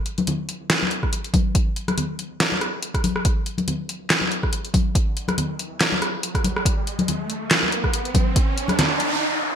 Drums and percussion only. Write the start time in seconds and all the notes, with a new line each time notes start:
0.06 closed hi-hat
0.18 closed hi-hat, high conga
0.27 closed hi-hat, low conga
0.49 closed hi-hat
0.70 snare, closed hi-hat
0.83 high conga
0.91 closed hi-hat
1.03 kick, cross-stick
1.13 closed hi-hat
1.24 closed hi-hat
1.34 kick, open hi-hat, high conga
1.55 kick, closed hi-hat
1.76 closed hi-hat
1.88 cross-stick, closed hi-hat, high conga
1.98 closed hi-hat, low conga
2.19 closed hi-hat
2.40 snare, closed hi-hat
2.52 high conga
2.61 cross-stick, closed hi-hat
2.83 closed hi-hat
2.94 kick, cross-stick, closed hi-hat
3.04 open hi-hat, high conga
3.16 cross-stick
3.25 kick, closed hi-hat
3.46 closed hi-hat
3.58 closed hi-hat, high conga
3.68 closed hi-hat, low conga
3.89 closed hi-hat
4.10 snare, clap, closed hi-hat
4.21 high conga
4.32 closed hi-hat
4.43 kick, cross-stick
4.53 closed hi-hat
4.65 closed hi-hat
4.74 kick, open hi-hat, high conga
4.95 kick, closed hi-hat
5.17 closed hi-hat
5.28 cross-stick, closed hi-hat, high conga
5.38 closed hi-hat, low conga
5.59 closed hi-hat
5.81 snare, clap, closed hi-hat
5.92 high conga
6.02 cross-stick, closed hi-hat
6.23 closed hi-hat
6.35 kick, cross-stick, closed hi-hat
6.44 open hi-hat, high conga
6.56 cross-stick
6.65 kick, closed hi-hat
6.87 closed hi-hat
6.99 closed hi-hat, high conga
7.08 closed hi-hat, low conga
7.30 closed hi-hat
7.51 snare, clap, closed hi-hat
7.63 high conga
7.72 closed hi-hat
7.84 kick, cross-stick
7.94 closed hi-hat
8.05 closed hi-hat
8.14 kick, open hi-hat, high conga
8.36 kick, closed hi-hat
8.58 closed hi-hat
8.68 cross-stick, closed hi-hat, high conga
8.79 snare, closed hi-hat, low conga
9.00 closed hi-hat